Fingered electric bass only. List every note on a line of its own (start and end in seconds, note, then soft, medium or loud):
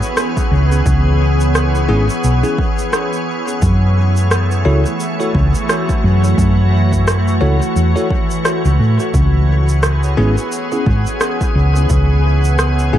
0.51 0.83 C#2 medium
0.86 1.87 C#2 medium
1.89 2.07 G#1 medium
2.24 2.42 B1 medium
3.62 4.63 F#2 medium
4.66 4.83 C#2 loud
5.35 5.52 C#2 medium
6.04 6.35 F#2 medium
6.38 7.39 F#2 medium
7.42 7.59 C#2 medium
7.76 7.94 E2 medium
8.65 8.78 C#2 medium
8.80 8.97 A2 medium
9.14 10.15 C#2 loud
10.18 10.35 G#1 medium
10.87 11.04 G#1 medium
11.55 11.86 C#2 medium
11.90 12.90 C#2 medium
12.93 12.98 G#1 medium